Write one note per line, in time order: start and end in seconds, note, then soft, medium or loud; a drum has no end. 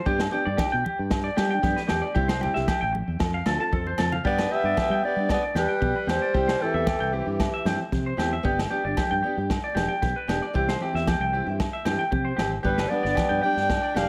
0.05 0.26 G2 loud
0.05 0.22 B3 medium
0.05 0.23 D4 medium
0.05 0.19 G4 medium
0.05 0.24 G4 loud
0.05 kick medium
0.05 muted conga soft
0.19 snare medium
0.19 low agogo medium
0.31 0.46 B3 medium
0.31 0.47 D4 medium
0.31 0.45 G4 medium
0.31 muted conga soft
0.45 0.56 G2 medium
0.45 0.63 D4 soft
0.45 0.61 G4 soft
0.45 0.58 D5 medium
0.57 0.71 G4 medium
0.57 kick medium
0.57 snare medium
0.57 high conga medium
0.57 low agogo medium
0.72 0.82 B2 medium
0.72 0.84 G5 medium
0.85 0.98 G4 medium
0.85 high conga medium
0.99 1.28 G2 medium
1.10 kick medium
1.10 snare medium
1.10 muted conga soft
1.10 low agogo medium
1.24 1.36 D5 medium
1.36 1.58 G3 loud
1.36 1.51 B3 medium
1.36 1.51 D4 medium
1.36 1.50 G4 medium
1.36 1.52 G4 medium
1.36 snare medium
1.36 low agogo medium
1.51 1.63 D4 soft
1.51 1.62 G5 medium
1.62 1.74 G2 loud
1.62 1.79 B3 medium
1.62 1.80 D4 medium
1.62 1.76 G4 medium
1.62 1.81 G4 medium
1.62 kick medium
1.62 snare soft
1.62 muted conga soft
1.62 high conga medium
1.76 1.88 B4 medium
1.76 snare soft
1.88 2.01 E2 medium
1.88 2.05 B3 medium
1.88 2.06 D4 medium
1.88 2.02 G4 medium
1.88 2.06 G4 medium
1.88 snare medium
1.88 low agogo medium
2.02 2.14 D5 medium
2.15 2.46 C2 medium
2.15 2.31 G3 medium
2.15 2.32 C4 medium
2.15 2.32 E4 medium
2.15 2.28 G4 medium
2.15 2.32 G4 medium
2.15 kick medium
2.15 muted conga soft
2.28 2.40 C5 medium
2.28 snare medium
2.28 low agogo medium
2.41 2.55 G3 medium
2.41 2.56 C4 medium
2.41 2.56 E4 medium
2.41 2.54 G4 medium
2.41 muted conga soft
2.41 low conga medium
2.54 2.66 C2 medium
2.54 2.72 C4 soft
2.54 2.71 E4 soft
2.54 2.71 G4 medium
2.54 2.66 E5 medium
2.54 snare soft
2.68 2.81 G4 medium
2.68 kick medium
2.68 snare medium
2.68 high conga medium
2.68 low agogo medium
2.81 3.02 A1 medium
2.81 2.93 G5 medium
2.93 muted clean electric guitar stroke medium
2.93 high conga medium
3.08 3.17 E2 medium
3.19 3.40 F2 loud
3.19 3.36 F3 medium
3.19 3.37 A4 medium
3.19 muted steel-string acoustic guitar stroke medium
3.19 kick medium
3.19 snare medium
3.19 low agogo medium
3.34 3.46 F5 medium
3.46 3.57 D2 loud
3.46 3.60 F3 medium
3.46 3.61 C4 medium
3.46 3.60 F4 medium
3.46 3.59 A4 medium
3.46 3.58 A4 medium
3.46 snare medium
3.46 low agogo medium
3.60 3.71 C4 soft
3.60 3.72 F4 medium
3.60 3.72 A4 medium
3.60 3.72 A5 medium
3.71 3.92 F2 medium
3.71 3.88 F3 medium
3.71 3.89 C4 medium
3.71 3.89 F4 medium
3.71 3.86 A4 medium
3.71 3.90 A4 medium
3.71 kick medium
3.71 high conga soft
3.87 3.98 C5 medium
3.87 high conga medium
3.98 4.18 F2 medium
3.98 4.15 F3 medium
3.98 4.15 C4 medium
3.98 4.15 F4 medium
3.98 4.12 A4 medium
3.98 4.16 A4 medium
3.98 snare medium
3.98 low conga medium
3.98 low agogo medium
4.12 4.24 F5 medium
4.12 low conga medium
4.24 4.45 G2 medium
4.24 4.41 B3 medium
4.24 4.52 B3 medium
4.24 4.41 D4 medium
4.24 4.38 G4 medium
4.24 4.42 G4 medium
4.24 4.53 D5 medium
4.24 kick medium
4.24 muted conga soft
4.38 4.50 B4 medium
4.38 snare medium
4.38 low agogo medium
4.49 4.64 B3 soft
4.49 5.04 B3 medium
4.49 4.65 D4 medium
4.49 4.64 G4 medium
4.49 4.62 G4 medium
4.49 5.04 E5 loud
4.64 4.73 G2 medium
4.64 4.81 D4 soft
4.64 4.79 G4 soft
4.64 4.77 D5 medium
4.77 4.90 G4 medium
4.77 kick medium
4.77 snare medium
4.77 high conga medium
4.77 low agogo medium
4.90 5.00 G3 medium
4.90 5.03 G5 medium
5.03 5.17 B3 soft
5.03 5.18 D4 medium
5.03 5.17 G4 medium
5.03 5.15 G4 medium
5.03 5.29 D5 medium
5.03 muted conga soft
5.07 5.30 B3 medium
5.16 5.37 G3 medium
5.16 5.33 D4 soft
5.16 5.32 G4 soft
5.29 5.43 D5 medium
5.29 kick medium
5.29 snare medium
5.29 muted conga soft
5.29 low agogo medium
5.34 5.44 B3 medium
5.43 5.55 D5 medium
5.55 5.66 E2 medium
5.55 6.12 G3 medium
5.55 5.72 B3 medium
5.55 5.72 D4 soft
5.55 5.69 G4 medium
5.55 5.73 G4 medium
5.55 6.12 B4 medium
5.55 snare medium
5.55 muted conga soft
5.55 high conga medium
5.55 low agogo medium
5.69 5.81 G5 medium
5.81 5.92 B2 medium
5.81 5.94 G4 medium
5.81 kick medium
5.81 high conga medium
5.96 6.07 B4 medium
6.07 6.18 E2 medium
6.07 6.24 B3 medium
6.07 6.25 D4 medium
6.07 6.21 G4 medium
6.07 6.25 G4 medium
6.07 6.64 C5 loud
6.07 snare medium
6.07 low agogo medium
6.12 6.67 G3 medium
6.22 6.34 D5 medium
6.34 6.54 C2 medium
6.34 6.51 C4 medium
6.34 6.52 E4 medium
6.34 6.47 G4 medium
6.34 6.52 G4 medium
6.34 muted steel-string acoustic guitar stroke medium
6.34 kick medium
6.34 muted conga soft
6.48 6.60 C5 medium
6.48 snare medium
6.48 low agogo medium
6.60 6.75 E3 medium
6.60 6.75 C4 medium
6.60 6.75 E4 medium
6.60 6.73 G4 medium
6.60 6.74 G4 medium
6.60 7.15 A4 medium
6.65 7.16 E3 medium
6.74 6.94 E2 medium
6.74 6.91 C4 soft
6.74 6.90 E4 soft
6.74 6.90 G4 medium
6.74 6.86 E5 medium
6.86 7.00 G4 medium
6.86 kick medium
6.86 snare medium
6.86 high conga medium
6.86 low conga soft
6.86 low agogo medium
7.00 7.21 C2 medium
7.00 7.12 G5 medium
7.12 7.27 E3 medium
7.12 7.27 C4 medium
7.12 7.26 E4 medium
7.12 7.66 G4 medium
7.12 7.26 G4 medium
7.12 7.24 G4 soft
7.12 muted conga soft
7.16 7.67 E3 medium
7.25 7.47 G2 medium
7.25 7.43 C4 soft
7.25 7.43 E4 soft
7.25 7.41 G4 medium
7.40 kick medium
7.40 snare medium
7.40 muted conga soft
7.40 low agogo medium
7.54 7.65 E5 medium
7.65 7.76 G2 loud
7.65 7.82 E3 medium
7.65 7.82 C4 medium
7.65 7.83 E4 medium
7.65 7.79 G4 medium
7.65 7.83 G4 soft
7.65 snare medium
7.65 muted conga soft
7.65 high conga medium
7.65 low agogo medium
7.92 8.12 C3 medium
7.92 kick medium
7.92 snare soft
7.92 high conga medium
8.06 8.18 C5 medium
8.17 8.38 E2 medium
8.17 8.34 E3 medium
8.17 8.35 C4 medium
8.17 8.35 E4 medium
8.17 8.31 G4 medium
8.17 8.35 G4 medium
8.17 snare medium
8.17 low agogo medium
8.33 8.44 E5 medium
8.43 8.65 G1 loud
8.43 8.60 B3 loud
8.43 8.61 D4 medium
8.43 8.58 G4 medium
8.43 8.61 G4 medium
8.43 kick medium
8.43 muted conga soft
8.59 snare medium
8.59 low agogo medium
8.70 8.84 B3 medium
8.70 8.85 D4 medium
8.70 8.84 G4 medium
8.70 8.83 G4 medium
8.84 8.94 G1 medium
8.84 9.01 D4 soft
8.84 9.00 G4 medium
8.84 8.96 D5 medium
8.97 9.10 G4 medium
8.97 kick loud
8.97 snare medium
8.97 high conga medium
8.97 low agogo medium
9.11 9.21 G2 medium
9.11 9.22 G5 medium
9.23 9.38 B3 medium
9.23 9.38 D4 medium
9.23 9.36 G4 medium
9.23 9.37 G4 medium
9.23 muted conga soft
9.37 9.57 G2 medium
9.37 9.53 G4 medium
9.37 muted steel-string acoustic guitar stroke soft
9.50 kick medium
9.50 snare medium
9.50 muted conga soft
9.50 low agogo medium
9.64 9.75 D5 medium
9.75 9.86 E1 loud
9.75 9.92 B3 medium
9.75 9.93 D4 medium
9.75 9.88 G4 medium
9.75 9.93 G4 medium
9.75 snare medium
9.75 muted conga soft
9.75 high conga medium
9.75 low agogo medium
9.88 10.01 G5 medium
10.02 10.13 B1 loud
10.02 10.15 G4 medium
10.02 kick medium
10.02 snare soft
10.02 high conga medium
10.16 10.28 B4 medium
10.28 10.39 E1 medium
10.28 10.44 B3 medium
10.28 10.45 D4 medium
10.28 10.41 G4 medium
10.28 10.46 G4 medium
10.28 snare medium
10.28 low agogo medium
10.42 10.54 D5 medium
10.53 10.75 C2 medium
10.53 10.70 E3 medium
10.53 10.71 C4 medium
10.53 10.71 E4 medium
10.53 10.68 G4 medium
10.53 10.72 G4 loud
10.53 kick medium
10.53 muted conga soft
10.68 10.80 C5 medium
10.68 snare medium
10.68 low agogo medium
10.80 10.94 E3 medium
10.80 10.95 C4 medium
10.80 10.93 E4 medium
10.80 10.94 G4 medium
10.80 10.92 G4 medium
10.93 11.15 E2 medium
10.93 11.10 C4 soft
10.93 11.10 E4 soft
10.93 11.09 G4 medium
10.93 11.07 E5 medium
10.93 snare soft
11.07 11.20 G4 medium
11.07 kick medium
11.07 snare medium
11.07 high conga medium
11.07 low conga medium
11.07 low agogo medium
11.20 11.41 C2 medium
11.20 11.33 G5 medium
11.32 11.47 E3 medium
11.32 11.47 C4 medium
11.32 11.47 E4 medium
11.32 11.46 G4 medium
11.32 11.45 G4 medium
11.32 muted conga soft
11.46 11.67 G2 medium
11.46 11.64 C4 soft
11.46 11.63 E4 medium
11.46 11.62 G4 medium
11.60 kick medium
11.60 snare medium
11.60 muted conga soft
11.60 low agogo medium
11.73 11.85 E5 medium
11.85 11.96 G2 loud
11.85 12.02 E3 soft
11.85 12.02 C4 medium
11.85 12.03 E4 medium
11.85 11.99 G4 medium
11.85 12.03 G4 medium
11.85 snare medium
11.85 muted conga soft
11.85 high conga medium
11.85 low agogo medium
11.99 12.11 G5 medium
12.11 12.32 C3 medium
12.11 12.25 G4 medium
12.11 kick medium
12.11 high conga medium
12.25 12.37 C5 medium
12.37 12.58 G#1 medium
12.37 12.55 E3 medium
12.37 12.55 C4 medium
12.37 12.56 E4 medium
12.37 12.50 G4 medium
12.37 12.56 G4 medium
12.37 snare medium
12.37 low agogo medium
12.63 12.84 G1 medium
12.63 12.80 G3 medium
12.63 12.92 G3 medium
12.63 12.81 B3 medium
12.63 12.81 D4 medium
12.63 12.77 G4 medium
12.63 12.81 G4 medium
12.63 12.90 B4 medium
12.63 kick medium
12.63 muted conga soft
12.78 12.90 B4 medium
12.78 snare medium
12.78 low agogo medium
12.89 13.04 G3 medium
12.89 13.43 B3 medium
12.89 13.05 B3 medium
12.89 13.04 D4 medium
12.89 13.06 G4 medium
12.89 13.42 D5 medium
12.89 muted clean electric guitar stroke medium
13.03 13.14 G1 medium
13.03 13.20 D4 soft
13.03 13.16 D5 medium
13.03 muted steel-string acoustic guitar stroke soft
13.03 snare soft
13.15 13.29 G4 medium
13.15 kick medium
13.15 snare medium
13.15 high conga medium
13.15 low agogo medium
13.29 13.40 G2 medium
13.29 13.42 G5 medium
13.41 13.57 G3 soft
13.41 13.58 B3 soft
13.41 13.56 D4 medium
13.41 13.98 D4 medium
13.41 13.55 G4 medium
13.41 13.98 G5 loud
13.41 muted conga soft
13.56 13.77 G2 medium
13.56 13.73 B3 soft
13.56 13.72 G4 soft
13.56 muted steel-string acoustic guitar stroke soft
13.56 snare soft
13.69 kick medium
13.69 snare medium
13.69 muted conga soft
13.69 low agogo medium
13.82 13.94 D5 medium
13.94 14.07 E1 medium
13.94 14.09 G3 soft
13.94 14.09 B3 medium
13.94 14.09 D4 medium
13.94 14.09 D4 loud
13.94 14.08 G4 medium
13.94 14.09 G4 medium
13.94 14.09 F5 medium
13.94 snare medium
13.94 high conga medium
13.94 low agogo medium